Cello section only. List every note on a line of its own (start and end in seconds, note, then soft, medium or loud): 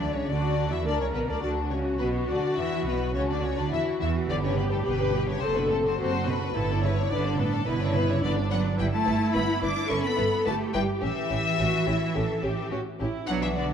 0.00 0.14 D3 medium
0.14 0.29 C#3 soft
0.28 0.71 D3 medium
0.72 0.86 E3 medium
0.86 1.00 D3 medium
1.00 1.14 C#3 soft
1.14 1.29 B2 soft
1.29 1.42 D3 soft
1.43 1.51 D3 medium
1.71 2.00 C#3 medium
2.00 2.28 B2 medium
2.29 2.57 D3 soft
2.57 2.85 E3 medium
2.86 3.14 B2 medium
3.15 3.29 C#3 medium
3.29 3.43 D3 medium
3.43 3.57 C#3 medium
3.57 3.71 D3 medium
3.72 3.99 E3 medium
4.00 4.28 E3 medium
4.29 4.43 D3 medium
4.43 4.57 C#3 medium
4.57 4.71 B2 medium
4.71 4.85 A2 medium
4.86 5.28 B2 medium
5.28 5.42 C#3 medium
5.42 5.56 C3 medium
5.56 5.70 B2 medium
5.71 5.85 A2 medium
5.85 5.98 C3 medium
5.99 6.07 C3 medium
6.27 6.35 B2 medium
6.55 6.63 A2 medium
6.83 6.91 C#3 medium
7.11 7.38 D3 medium
7.39 7.67 A2 medium
7.67 7.81 B2 medium
7.81 7.95 C#3 medium
7.95 8.09 B2 medium
8.10 8.15 C#3 medium
8.24 8.32 D3 medium
8.51 8.79 F#3 medium
8.80 8.93 G3 medium
8.94 9.34 A3 medium
9.35 9.62 B3 medium
9.63 9.90 D4 medium
9.91 10.04 C#4 medium
10.05 10.47 B3 medium
10.47 10.75 A3 medium
10.76 10.84 G3 medium
11.03 12.69 E3 medium
13.29 13.42 F#3 medium
13.43 13.57 E3 medium
13.57 13.71 D3 medium